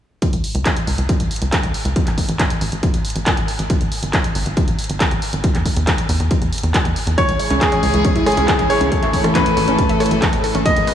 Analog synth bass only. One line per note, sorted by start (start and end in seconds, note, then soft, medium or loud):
0.33 0.42 C#2 medium
0.55 0.64 C#2 medium
0.87 0.96 C#2 medium
0.98 1.07 C#2 medium
1.20 1.29 C#2 medium
1.42 1.51 C#2 medium
1.63 1.73 C#2 medium
1.85 1.94 C#2 medium
2.07 2.16 A1 medium
2.29 2.38 A1 medium
2.61 2.70 A1 medium
2.72 2.81 A1 medium
2.94 3.03 A1 medium
3.16 3.25 A1 medium
3.37 3.46 A1 medium
3.59 3.68 A1 medium
3.81 3.90 G#1 medium
4.03 4.12 G#1 medium
4.35 4.44 G#1 loud
4.46 4.55 G#1 medium
4.68 4.77 G#1 medium
4.90 4.99 G#1 medium
5.11 5.20 G#1 medium
5.33 5.42 G#1 medium
5.55 5.64 E2 medium
5.77 5.86 E2 medium
6.09 6.18 E2 loud
6.20 6.29 E2 medium
6.42 6.51 E2 medium
6.63 6.73 E2 medium
6.85 6.94 E2 medium
7.07 7.16 E2 medium
7.29 7.38 C#2 medium
7.51 7.60 C#2 medium
7.83 7.92 C#2 medium
7.94 8.03 C#2 medium
8.16 8.25 C#2 medium
8.37 8.46 C#2 medium
8.59 8.68 C#2 medium
8.81 8.90 C#2 medium
9.03 9.12 A1 medium
9.24 9.33 A1 medium
9.57 9.66 A1 medium
9.68 9.77 A1 medium
9.90 9.99 A1 medium
10.11 10.20 A1 medium
10.33 10.42 A1 medium
10.55 10.64 A1 medium
10.77 10.86 G#1 medium